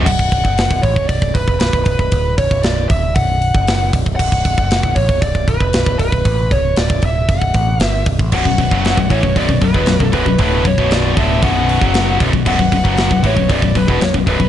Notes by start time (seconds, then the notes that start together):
0.06 B0 F#5, kick, crash
0.19 B0, kick
0.32 B0, kick, open hi-hat
0.45 F#1, kick
0.58 snare, open hi-hat
0.70 B0, kick
0.82 A1 C#5, kick, open hi-hat
0.96 B0, kick
1.08 B0 D5, kick, open hi-hat
1.22 B0, kick
1.34 B0 B4, kick, open hi-hat
1.48 E1, kick
1.60 B0 B4, snare, open hi-hat
1.73 B0, kick
1.85 B0 B4, kick, open hi-hat
1.99 B0, kick
2.12 D1, kick, open hi-hat
2.38 B0 C#5, kick, open hi-hat
2.51 B0, kick
2.63 D5, snare, open hi-hat
2.89 D1 E5, kick, open hi-hat
3.15 B0 F#5, kick, open hi-hat
3.42 open hi-hat
3.55 F#1, kick
3.67 snare, open hi-hat
3.93 B0, kick, open hi-hat
4.06 B0, kick
4.16 B0 F#5, kick, crash
4.32 B0, kick
4.45 B0, kick, open hi-hat
4.58 F#1, kick
4.71 snare, open hi-hat
4.83 B0, kick
4.95 A1 C#5, kick, open hi-hat
5.09 B0, kick
5.22 B0 D5, kick, open hi-hat
5.35 B0, kick
5.48 B0 B4, kick, open hi-hat
5.60 E1, kick
5.73 B0, snare, open hi-hat
5.86 B0, kick
5.99 B0 B4, kick, open hi-hat
6.12 B0, kick
6.25 A1, kick, open hi-hat
6.51 C#1 C#5, kick, open hi-hat
6.76 D1 D5, snare, open hi-hat
6.90 B0, kick
7.02 D1 E5, kick, open hi-hat
7.28 F#1 F#5, kick, open hi-hat
7.42 B0, kick
7.54 A1, kick, open hi-hat
7.80 G1, snare, open hi-hat
7.84 E5
8.06 B0, kick, open hi-hat
8.19 A1, kick
8.32 B0 B1 F#2 B3 F#4 C#5 D5 F#5, kick, crash
8.45 B0 B1 F#2, kick
8.58 B0 B1 F#2, kick, open hi-hat
8.71 F#1 F#2 C#3 F#3, kick
8.85 snare, open hi-hat
8.97 B0 B1 F#2, kick
9.10 A1 A2 E3 C#5, kick, open hi-hat
9.23 B0 B1 F#2, kick
9.36 B0 B1 F#2 D5, kick, open hi-hat
9.48 B0 B1 F#2, kick
9.61 B0 B1 F#2 B4, kick, open hi-hat
9.74 E1 E2 B2, kick
9.86 B0 B1 F#2, snare, open hi-hat
10.00 B0 B1 F#2, kick
10.13 B0 B1 F#2 B4, kick, open hi-hat
10.26 B0 B1 F#2, kick
10.38 D1 D2 A2 D3 B4, kick, open hi-hat
10.64 B0 B1 F#2 C#5, kick, open hi-hat
10.78 B0 B1 F#2 B2, kick
10.91 D5, snare, open hi-hat
11.16 D1 D2 A2 D3 E5, kick, open hi-hat
11.42 B0 B1 F#2 B2 F#5, kick, open hi-hat
11.69 open hi-hat
11.81 F#1 F#2 C#3 F#3, kick
11.94 snare, open hi-hat
12.19 B0 B1 F#2, kick, open hi-hat
12.32 B0 B1 F#2, kick
12.45 B0 B1 F#2 B4 F#5, kick, crash
12.59 B0 B1 F#2, kick
12.72 B0 B1 F#2, kick, open hi-hat
12.84 F#1 F#2 C#3 F#3, kick
12.97 snare, open hi-hat
13.10 B0 B1 F#2, kick
13.23 A1 A2 E3 C#5, kick, open hi-hat
13.36 B0 B1 F#2, kick
13.49 B0 B1 F#2 D5, kick, open hi-hat
13.62 B0 B1 F#2, kick
13.75 B0 B1 F#2 B4, kick, open hi-hat
13.88 E1 E2 B2, kick
14.00 B0 B1 F#2 C#5, snare, open hi-hat
14.14 B0 B1 F#2, kick
14.26 B0 B1 F#2 B4, kick, open hi-hat
14.39 B0 B1 F#2, kick